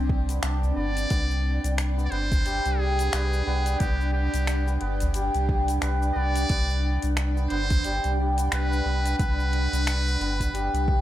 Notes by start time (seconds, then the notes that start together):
Already playing: C2 C4 D4 G4 D5 G5
0.09 kick
0.29 B3, closed hi-hat, shaker
0.42 C2 D4, finger snap, closed hi-hat, shaker
0.63 udu, shaker
0.76 G1 B3 D5
0.97 closed hi-hat, shaker
1.10 C2 B3 D4, kick, closed hi-hat, shaker
1.31 shaker
1.64 C2, closed hi-hat, shaker
1.78 finger snap, closed hi-hat, shaker
1.98 B3, shaker
2.05 D5
2.11 G1 B3 C5, closed hi-hat
2.32 kick, closed hi-hat, udu, shaker
2.46 G3, closed hi-hat, shaker
2.66 C2, closed hi-hat, shaker
2.78 G4 G#4
2.99 B3, closed hi-hat, shaker
3.13 C2 B4, finger snap, closed hi-hat, shaker
3.33 shaker
3.47 C2 B3
3.66 closed hi-hat, shaker
3.80 C2 B3 G4, kick, closed hi-hat, shaker
4.01 shaker
4.14 G4
4.34 C2, closed hi-hat, shaker
4.47 finger snap, closed hi-hat, shaker
4.67 B3, shaker
4.81 G1 B3, closed hi-hat
5.00 closed hi-hat, udu, shaker
5.14 G3, closed hi-hat, shaker
5.34 C2, closed hi-hat, shaker
5.49 G4, kick
5.68 B3, closed hi-hat, shaker
5.82 C2 B4, finger snap, closed hi-hat, shaker
6.02 shaker
6.15 C2 B3 D5
6.36 closed hi-hat, shaker
6.49 C2 B3, kick, closed hi-hat, shaker
6.70 shaker
7.02 C2, closed hi-hat, shaker
7.17 finger snap, closed hi-hat, shaker
7.37 B3, shaker
7.50 G1 B3 C5, closed hi-hat
7.70 kick, closed hi-hat, udu, shaker
7.84 G3, closed hi-hat, shaker
8.04 C2, closed hi-hat, shaker
8.18 G4
8.38 B3, closed hi-hat, shaker
8.52 C2 B4, finger snap, closed hi-hat, shaker
8.73 shaker
8.85 C2 B3
9.06 closed hi-hat, shaker
9.19 C2 B3 B4, kick, closed hi-hat, shaker
9.40 shaker
9.53 closed hi-hat
9.73 C2, closed hi-hat, shaker
9.87 finger snap, closed hi-hat, shaker
10.07 B3, shaker
10.20 G1 B3, closed hi-hat
10.40 kick, closed hi-hat, udu, shaker
10.54 G3, closed hi-hat, shaker
10.74 C2, closed hi-hat, shaker
10.88 G4, kick